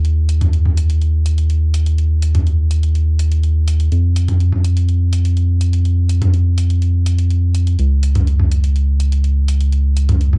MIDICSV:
0, 0, Header, 1, 3, 480
1, 0, Start_track
1, 0, Tempo, 483871
1, 46, Time_signature, 4, 2, 24, 8
1, 10297, End_track
2, 0, Start_track
2, 0, Title_t, "Analog synth bass"
2, 0, Program_c, 0, 38
2, 0, Note_on_c, 0, 39, 82
2, 3862, Note_off_c, 0, 39, 0
2, 3885, Note_on_c, 0, 41, 82
2, 7702, Note_off_c, 0, 41, 0
2, 7726, Note_on_c, 0, 37, 82
2, 10297, Note_off_c, 0, 37, 0
2, 10297, End_track
3, 0, Start_track
3, 0, Title_t, "Drums"
3, 46, Note_on_c, 9, 42, 31
3, 145, Note_off_c, 9, 42, 0
3, 285, Note_on_c, 9, 42, 69
3, 384, Note_off_c, 9, 42, 0
3, 408, Note_on_c, 9, 42, 41
3, 408, Note_on_c, 9, 45, 80
3, 507, Note_off_c, 9, 42, 0
3, 507, Note_off_c, 9, 45, 0
3, 527, Note_on_c, 9, 42, 30
3, 626, Note_off_c, 9, 42, 0
3, 649, Note_on_c, 9, 45, 69
3, 748, Note_off_c, 9, 45, 0
3, 767, Note_on_c, 9, 42, 68
3, 866, Note_off_c, 9, 42, 0
3, 889, Note_on_c, 9, 42, 39
3, 988, Note_off_c, 9, 42, 0
3, 1006, Note_on_c, 9, 42, 29
3, 1105, Note_off_c, 9, 42, 0
3, 1247, Note_on_c, 9, 42, 72
3, 1346, Note_off_c, 9, 42, 0
3, 1368, Note_on_c, 9, 42, 41
3, 1467, Note_off_c, 9, 42, 0
3, 1486, Note_on_c, 9, 42, 31
3, 1585, Note_off_c, 9, 42, 0
3, 1726, Note_on_c, 9, 42, 72
3, 1825, Note_off_c, 9, 42, 0
3, 1848, Note_on_c, 9, 42, 40
3, 1948, Note_off_c, 9, 42, 0
3, 1968, Note_on_c, 9, 42, 29
3, 2067, Note_off_c, 9, 42, 0
3, 2206, Note_on_c, 9, 42, 67
3, 2305, Note_off_c, 9, 42, 0
3, 2329, Note_on_c, 9, 42, 39
3, 2329, Note_on_c, 9, 45, 80
3, 2428, Note_off_c, 9, 42, 0
3, 2428, Note_off_c, 9, 45, 0
3, 2448, Note_on_c, 9, 42, 28
3, 2547, Note_off_c, 9, 42, 0
3, 2686, Note_on_c, 9, 42, 67
3, 2786, Note_off_c, 9, 42, 0
3, 2810, Note_on_c, 9, 42, 38
3, 2909, Note_off_c, 9, 42, 0
3, 2928, Note_on_c, 9, 42, 28
3, 3027, Note_off_c, 9, 42, 0
3, 3167, Note_on_c, 9, 42, 71
3, 3267, Note_off_c, 9, 42, 0
3, 3290, Note_on_c, 9, 42, 39
3, 3389, Note_off_c, 9, 42, 0
3, 3407, Note_on_c, 9, 42, 29
3, 3506, Note_off_c, 9, 42, 0
3, 3647, Note_on_c, 9, 42, 69
3, 3746, Note_off_c, 9, 42, 0
3, 3768, Note_on_c, 9, 42, 39
3, 3867, Note_off_c, 9, 42, 0
3, 3888, Note_on_c, 9, 42, 28
3, 3987, Note_off_c, 9, 42, 0
3, 4128, Note_on_c, 9, 42, 65
3, 4227, Note_off_c, 9, 42, 0
3, 4249, Note_on_c, 9, 42, 38
3, 4249, Note_on_c, 9, 45, 84
3, 4348, Note_off_c, 9, 42, 0
3, 4348, Note_off_c, 9, 45, 0
3, 4368, Note_on_c, 9, 42, 28
3, 4467, Note_off_c, 9, 42, 0
3, 4488, Note_on_c, 9, 45, 74
3, 4587, Note_off_c, 9, 45, 0
3, 4606, Note_on_c, 9, 42, 65
3, 4706, Note_off_c, 9, 42, 0
3, 4728, Note_on_c, 9, 42, 38
3, 4827, Note_off_c, 9, 42, 0
3, 4846, Note_on_c, 9, 42, 28
3, 4945, Note_off_c, 9, 42, 0
3, 5085, Note_on_c, 9, 42, 67
3, 5184, Note_off_c, 9, 42, 0
3, 5208, Note_on_c, 9, 42, 38
3, 5307, Note_off_c, 9, 42, 0
3, 5325, Note_on_c, 9, 42, 28
3, 5424, Note_off_c, 9, 42, 0
3, 5564, Note_on_c, 9, 42, 67
3, 5664, Note_off_c, 9, 42, 0
3, 5686, Note_on_c, 9, 42, 37
3, 5786, Note_off_c, 9, 42, 0
3, 5805, Note_on_c, 9, 42, 29
3, 5904, Note_off_c, 9, 42, 0
3, 6045, Note_on_c, 9, 42, 66
3, 6144, Note_off_c, 9, 42, 0
3, 6167, Note_on_c, 9, 42, 39
3, 6167, Note_on_c, 9, 45, 86
3, 6266, Note_off_c, 9, 42, 0
3, 6266, Note_off_c, 9, 45, 0
3, 6286, Note_on_c, 9, 42, 27
3, 6385, Note_off_c, 9, 42, 0
3, 6525, Note_on_c, 9, 42, 66
3, 6624, Note_off_c, 9, 42, 0
3, 6647, Note_on_c, 9, 42, 37
3, 6747, Note_off_c, 9, 42, 0
3, 6765, Note_on_c, 9, 42, 28
3, 6865, Note_off_c, 9, 42, 0
3, 7006, Note_on_c, 9, 42, 67
3, 7105, Note_off_c, 9, 42, 0
3, 7128, Note_on_c, 9, 42, 38
3, 7227, Note_off_c, 9, 42, 0
3, 7247, Note_on_c, 9, 42, 29
3, 7346, Note_off_c, 9, 42, 0
3, 7486, Note_on_c, 9, 42, 69
3, 7585, Note_off_c, 9, 42, 0
3, 7609, Note_on_c, 9, 42, 37
3, 7708, Note_off_c, 9, 42, 0
3, 7726, Note_on_c, 9, 42, 30
3, 7825, Note_off_c, 9, 42, 0
3, 7966, Note_on_c, 9, 42, 67
3, 8065, Note_off_c, 9, 42, 0
3, 8088, Note_on_c, 9, 42, 41
3, 8088, Note_on_c, 9, 45, 86
3, 8187, Note_off_c, 9, 42, 0
3, 8187, Note_off_c, 9, 45, 0
3, 8207, Note_on_c, 9, 42, 29
3, 8306, Note_off_c, 9, 42, 0
3, 8329, Note_on_c, 9, 45, 78
3, 8428, Note_off_c, 9, 45, 0
3, 8447, Note_on_c, 9, 42, 65
3, 8547, Note_off_c, 9, 42, 0
3, 8569, Note_on_c, 9, 42, 39
3, 8669, Note_off_c, 9, 42, 0
3, 8688, Note_on_c, 9, 42, 29
3, 8787, Note_off_c, 9, 42, 0
3, 8928, Note_on_c, 9, 42, 69
3, 9027, Note_off_c, 9, 42, 0
3, 9049, Note_on_c, 9, 42, 39
3, 9149, Note_off_c, 9, 42, 0
3, 9167, Note_on_c, 9, 42, 29
3, 9267, Note_off_c, 9, 42, 0
3, 9407, Note_on_c, 9, 42, 70
3, 9506, Note_off_c, 9, 42, 0
3, 9529, Note_on_c, 9, 42, 39
3, 9628, Note_off_c, 9, 42, 0
3, 9647, Note_on_c, 9, 42, 31
3, 9746, Note_off_c, 9, 42, 0
3, 9886, Note_on_c, 9, 42, 72
3, 9986, Note_off_c, 9, 42, 0
3, 10008, Note_on_c, 9, 42, 41
3, 10008, Note_on_c, 9, 45, 86
3, 10108, Note_off_c, 9, 42, 0
3, 10108, Note_off_c, 9, 45, 0
3, 10127, Note_on_c, 9, 42, 30
3, 10226, Note_off_c, 9, 42, 0
3, 10249, Note_on_c, 9, 45, 77
3, 10297, Note_off_c, 9, 45, 0
3, 10297, End_track
0, 0, End_of_file